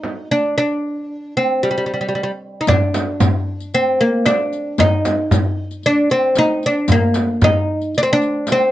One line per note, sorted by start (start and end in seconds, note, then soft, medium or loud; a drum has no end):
0.00 0.31 D#4 medium
0.00 frame drum medium
0.05 darbuka tek medium
0.31 0.56 D4 medium
0.44 darbuka ka soft
0.58 1.37 D4 medium
1.37 1.64 C4 medium
1.63 1.70 G3 medium
1.71 1.76 G3 soft
1.78 1.84 G3 soft
1.86 1.93 G3 soft
1.94 2.00 G3 soft
2.01 2.07 G3 soft
2.09 2.14 G3 soft
2.15 2.22 G3 soft
2.23 2.30 G3 medium
2.61 2.68 D#4 medium
2.67 3.74 D4 medium
2.67 riq medium
2.67 frame drum medium
2.67 darbuka dum medium
2.94 riq medium
2.94 darbuka tek medium
2.94 frame drum medium
3.20 riq medium
3.20 frame drum medium
3.20 darbuka dum loud
3.60 riq soft
3.60 darbuka ka soft
3.74 4.01 C4 medium
3.74 riq soft
3.74 darbuka ka soft
3.88 darbuka ka soft
4.01 4.27 A#3 medium
4.01 riq soft
4.26 4.80 D4 medium
4.26 riq medium
4.26 darbuka tek medium
4.26 frame drum medium
4.53 riq soft
4.78 5.86 D#4 medium
4.78 riq medium
4.78 frame drum medium
4.78 darbuka dum medium
5.05 riq medium
5.05 darbuka tek medium
5.05 frame drum medium
5.31 riq medium
5.31 darbuka dum medium
5.31 frame drum medium
5.71 riq soft
5.71 darbuka ka soft
5.83 6.11 D4 medium
5.83 riq soft
5.83 darbuka ka soft
6.10 6.38 C4 medium
6.10 riq soft
6.36 6.65 D#4 medium
6.36 riq medium
6.36 darbuka tek medium
6.36 frame drum medium
6.63 6.92 D4 medium
6.63 riq soft
6.88 7.40 A#3 medium
6.88 riq medium
6.88 frame drum medium
6.88 darbuka dum loud
7.14 riq medium
7.14 darbuka tek medium
7.14 frame drum medium
7.42 7.97 D#4 medium
7.42 riq medium
7.42 darbuka dum loud
7.42 frame drum medium
7.81 riq soft
7.81 darbuka ka soft
7.94 8.02 D4 loud
7.94 riq soft
7.94 darbuka ka soft
8.03 8.09 C4 medium
8.08 darbuka ka soft
8.13 8.51 D4 loud
8.22 riq soft
8.22 darbuka ka soft
8.47 riq medium
8.47 darbuka tek medium
8.47 frame drum medium
8.52 8.71 C4 medium